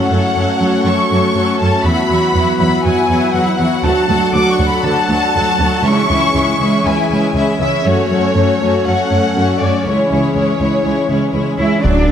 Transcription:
Already playing: A3 C#4 F#4 C#5 F#5
0.10 F#2 F#3 C#4 A4 C#5
0.35 F#2 F#3 C#4 A4 C#5
0.59 F#2 F#3 C#4 A4 C#5
0.85 F#2 F#3 C#4 A4 C#5 C#6
1.10 F#2 F#3 C#4 A4 C#5
1.35 F#2 F#3 C#4 A4 C#5
1.59 F#2 F#3 C#4 A4 C#5 A5
1.84 E2 F#3 B3 E4 F#4 E5 F#5 B5
2.09 E2 F#3 E4 F#4 F#5
2.34 E2 F#3 E4 F#4 F#5
2.59 E2 F#3 E4 F#4 F#5 B5
2.85 E2 F#3 E4 F#4 F#5 G#5
3.09 E2 F#3 E4 F#4 F#5
3.33 E2 F#3 E4 F#4 F#5
3.58 E2 F#3 E4 F#4 F#5
3.84 D2 F#3 D4 F#4 A4 F#5 A5
4.08 D2 F#3 F#4 A4 F#5
4.34 D2 F#3 F#4 A4 F#5 D6
4.52 C#6
4.59 D2 F#3 F#4 A4 F#5
4.69 B5
4.83 D2 F#3 F#4 A4 F#5 A5
5.10 D2 F#3 F#4 A4 F#5
5.35 D2 F#3 F#4 A4 F#5
5.59 D2 F#3 F#4 A4 F#5
5.84 C#2 E3 G#3 C#4 E4 G#4 C#5 E5 C#6
6.10 C#2 G#3 C#4 E4 E5
6.35 C#2 G#3 C#4 E4 E5
6.60 C#2 G#3 C#4 E4 E5
6.85 C#2 G#3 C#4 E4 E5 G#5
7.10 C#2 G#3 C#4 E4 E5
7.35 C#2 G#3 C#4 E4 E5
7.59 C#2 G#3 C#4 E4 E5
7.85 F#2 F#3 A3 C#4 F#4 A4 C#5
8.10 F#2 A3 C#4 F#4 C#5
8.36 F#2 A3 C#4 F#4 C#5
8.61 F#2 A3 C#4 F#4 C#5
8.86 F#2 A3 C#4 F#4 C#5 F#5
9.10 F#2 A3 C#4 F#4 C#5
9.35 F#2 A3 C#4 F#4 C#5
9.59 F#2 A3 C#4 F#4 C#5 D5
9.85 C#2 E3 G#3 C#4 E4 G#4 C#5
10.10 C#2 G#3 C#4 E4 C#5
10.35 C#2 G#3 C#4 E4 C#5
10.60 C#2 G#3 C#4 E4 C#5
10.84 C#2 G#3 C#4 E4 C#5
11.09 C#2 G#3 C#4 E4 C#5
11.33 C#2 G#3 C#4 E4 C#5
11.58 C#2 G#3 C#4 E4 C#5
11.84 D1 D2 F#3 A3 D4 A4 D5 F#5, taiko
12.08 D5

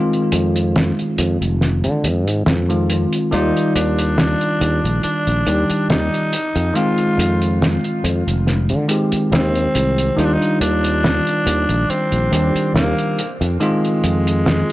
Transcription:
Already playing: D#3 G#3 C4 F4
0.13 closed hi-hat
0.32 F2, closed hi-hat
0.56 closed hi-hat
0.76 snare, closed hi-hat
0.99 closed hi-hat
1.18 F2, closed hi-hat
1.41 F1, closed hi-hat
1.61 snare, closed hi-hat
1.84 D3, closed hi-hat
2.04 F2, closed hi-hat
2.27 G#2, closed hi-hat
2.46 F2, snare, closed hi-hat
2.69 D#3 G#3 C4 F4, closed hi-hat
2.90 closed hi-hat
3.13 closed hi-hat
3.31 D#2 D#3 G3 D#4 F4 D5, closed hi-hat
3.57 closed hi-hat
3.75 D#2 D4, closed hi-hat
3.99 closed hi-hat
4.18 snare, closed hi-hat
4.41 closed hi-hat
4.61 D#2, closed hi-hat
4.84 A#1, closed hi-hat
5.03 D4, muted fretless electric bass stroke, closed hi-hat
5.27 A#1, closed hi-hat
5.46 D#2 D#3 G3 G4 D5, closed hi-hat
5.70 muted fretless electric bass stroke, closed hi-hat
5.89 D#2 D#4, snare, closed hi-hat
6.14 closed hi-hat
6.33 closed hi-hat
6.56 F2, closed hi-hat
6.74 D#3 G#3 C4 F4, closed hi-hat
6.98 closed hi-hat
7.18 F2, closed hi-hat
7.42 closed hi-hat
7.62 snare, closed hi-hat
7.84 closed hi-hat
8.04 F2, closed hi-hat
8.27 F1, closed hi-hat
8.47 snare, closed hi-hat
8.69 D3, closed hi-hat
8.88 D#3 G#3 C4 G4, closed hi-hat
9.12 muted fretless electric bass stroke, closed hi-hat
9.32 D#2 C4, snare, closed hi-hat
9.55 closed hi-hat
9.75 C2, closed hi-hat
9.98 closed hi-hat
10.16 D#2 D#3 G3 D4 D#4 F4, closed hi-hat
10.26 D4
10.34 D#4
10.42 closed hi-hat
10.61 D#2 D4, closed hi-hat
10.84 closed hi-hat
11.04 snare, closed hi-hat
11.27 closed hi-hat
11.47 D#2, closed hi-hat
11.69 A#1, closed hi-hat
11.89 C4, muted fretless electric bass stroke, closed hi-hat
12.12 A#1, closed hi-hat
12.32 D#2 D#3 G3 D4 G4, closed hi-hat
12.55 muted fretless electric bass stroke, closed hi-hat
12.74 D#2 A#3, snare, closed hi-hat
12.98 closed hi-hat
13.19 closed hi-hat
13.41 F2, closed hi-hat
13.60 D#3 G#3 C4 F4, closed hi-hat
13.84 closed hi-hat
14.04 F2, closed hi-hat
14.27 closed hi-hat
14.46 snare, closed hi-hat

